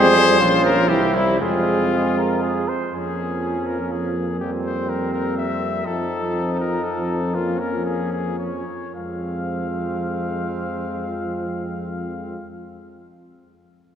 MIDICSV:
0, 0, Header, 1, 6, 480
1, 0, Start_track
1, 0, Key_signature, -4, "minor"
1, 0, Tempo, 486224
1, 877, Tempo, 509771
1, 1357, Time_signature, 3, 2, 24, 8
1, 3277, Tempo, 486224
1, 6157, Tempo, 502934
1, 7597, Tempo, 547945
1, 12929, End_track
2, 0, Start_track
2, 0, Title_t, "Trumpet"
2, 0, Program_c, 0, 56
2, 0, Note_on_c, 0, 72, 127
2, 622, Note_off_c, 0, 72, 0
2, 637, Note_on_c, 0, 70, 102
2, 877, Note_on_c, 0, 67, 95
2, 891, Note_off_c, 0, 70, 0
2, 1121, Note_on_c, 0, 64, 85
2, 1135, Note_off_c, 0, 67, 0
2, 1353, Note_off_c, 0, 64, 0
2, 1359, Note_on_c, 0, 65, 88
2, 2545, Note_off_c, 0, 65, 0
2, 2800, Note_on_c, 0, 68, 64
2, 3503, Note_on_c, 0, 70, 51
2, 3518, Note_off_c, 0, 68, 0
2, 3754, Note_on_c, 0, 68, 54
2, 3769, Note_off_c, 0, 70, 0
2, 4219, Note_off_c, 0, 68, 0
2, 4225, Note_on_c, 0, 67, 55
2, 4336, Note_off_c, 0, 67, 0
2, 4472, Note_on_c, 0, 72, 62
2, 4713, Note_on_c, 0, 70, 61
2, 4728, Note_off_c, 0, 72, 0
2, 4948, Note_off_c, 0, 70, 0
2, 4954, Note_on_c, 0, 70, 60
2, 5180, Note_off_c, 0, 70, 0
2, 5186, Note_on_c, 0, 76, 68
2, 5669, Note_on_c, 0, 69, 69
2, 5684, Note_off_c, 0, 76, 0
2, 6384, Note_off_c, 0, 69, 0
2, 6390, Note_on_c, 0, 70, 65
2, 6619, Note_on_c, 0, 69, 62
2, 6633, Note_off_c, 0, 70, 0
2, 7103, Note_on_c, 0, 65, 63
2, 7118, Note_off_c, 0, 69, 0
2, 7343, Note_on_c, 0, 70, 63
2, 7358, Note_off_c, 0, 65, 0
2, 7584, Note_off_c, 0, 70, 0
2, 7589, Note_on_c, 0, 68, 58
2, 7816, Note_off_c, 0, 68, 0
2, 7821, Note_on_c, 0, 68, 55
2, 8048, Note_off_c, 0, 68, 0
2, 8054, Note_on_c, 0, 73, 44
2, 8540, Note_off_c, 0, 73, 0
2, 8549, Note_on_c, 0, 77, 45
2, 11547, Note_off_c, 0, 77, 0
2, 12929, End_track
3, 0, Start_track
3, 0, Title_t, "Flugelhorn"
3, 0, Program_c, 1, 56
3, 0, Note_on_c, 1, 68, 104
3, 388, Note_off_c, 1, 68, 0
3, 400, Note_on_c, 1, 65, 90
3, 870, Note_off_c, 1, 65, 0
3, 879, Note_on_c, 1, 64, 83
3, 1348, Note_off_c, 1, 64, 0
3, 1368, Note_on_c, 1, 68, 70
3, 1791, Note_off_c, 1, 68, 0
3, 1850, Note_on_c, 1, 68, 64
3, 2071, Note_off_c, 1, 68, 0
3, 2088, Note_on_c, 1, 70, 67
3, 2318, Note_off_c, 1, 70, 0
3, 2323, Note_on_c, 1, 68, 67
3, 2568, Note_on_c, 1, 72, 66
3, 2582, Note_off_c, 1, 68, 0
3, 2808, Note_off_c, 1, 72, 0
3, 2820, Note_on_c, 1, 61, 43
3, 4068, Note_off_c, 1, 61, 0
3, 4235, Note_on_c, 1, 60, 47
3, 5642, Note_off_c, 1, 60, 0
3, 5678, Note_on_c, 1, 63, 54
3, 7083, Note_off_c, 1, 63, 0
3, 7125, Note_on_c, 1, 61, 45
3, 8292, Note_off_c, 1, 61, 0
3, 8549, Note_on_c, 1, 60, 36
3, 11546, Note_off_c, 1, 60, 0
3, 12929, End_track
4, 0, Start_track
4, 0, Title_t, "French horn"
4, 0, Program_c, 2, 60
4, 0, Note_on_c, 2, 60, 81
4, 382, Note_off_c, 2, 60, 0
4, 390, Note_on_c, 2, 61, 76
4, 865, Note_off_c, 2, 61, 0
4, 874, Note_on_c, 2, 60, 68
4, 1345, Note_off_c, 2, 60, 0
4, 1364, Note_on_c, 2, 60, 62
4, 2548, Note_off_c, 2, 60, 0
4, 2826, Note_on_c, 2, 58, 45
4, 5644, Note_off_c, 2, 58, 0
4, 5681, Note_on_c, 2, 60, 49
4, 7110, Note_on_c, 2, 58, 48
4, 7125, Note_off_c, 2, 60, 0
4, 8308, Note_off_c, 2, 58, 0
4, 8558, Note_on_c, 2, 56, 35
4, 11555, Note_off_c, 2, 56, 0
4, 12929, End_track
5, 0, Start_track
5, 0, Title_t, "Euphonium"
5, 0, Program_c, 3, 58
5, 0, Note_on_c, 3, 56, 83
5, 157, Note_on_c, 3, 55, 80
5, 172, Note_off_c, 3, 56, 0
5, 400, Note_on_c, 3, 53, 88
5, 414, Note_off_c, 3, 55, 0
5, 885, Note_on_c, 3, 52, 73
5, 899, Note_off_c, 3, 53, 0
5, 1121, Note_on_c, 3, 55, 62
5, 1135, Note_off_c, 3, 52, 0
5, 1356, Note_off_c, 3, 55, 0
5, 1362, Note_on_c, 3, 56, 65
5, 2546, Note_off_c, 3, 56, 0
5, 2813, Note_on_c, 3, 53, 41
5, 4243, Note_on_c, 3, 55, 40
5, 4257, Note_off_c, 3, 53, 0
5, 5668, Note_on_c, 3, 53, 49
5, 5683, Note_off_c, 3, 55, 0
5, 8305, Note_off_c, 3, 53, 0
5, 8550, Note_on_c, 3, 53, 35
5, 11548, Note_off_c, 3, 53, 0
5, 12929, End_track
6, 0, Start_track
6, 0, Title_t, "Bass trombone"
6, 0, Program_c, 4, 57
6, 0, Note_on_c, 4, 41, 90
6, 386, Note_off_c, 4, 41, 0
6, 399, Note_on_c, 4, 34, 80
6, 882, Note_on_c, 4, 36, 80
6, 896, Note_off_c, 4, 34, 0
6, 1363, Note_on_c, 4, 41, 68
6, 1377, Note_off_c, 4, 36, 0
6, 2571, Note_off_c, 4, 41, 0
6, 2814, Note_on_c, 4, 41, 47
6, 5638, Note_off_c, 4, 41, 0
6, 5676, Note_on_c, 4, 41, 51
6, 8273, Note_off_c, 4, 41, 0
6, 8553, Note_on_c, 4, 41, 39
6, 11550, Note_off_c, 4, 41, 0
6, 12929, End_track
0, 0, End_of_file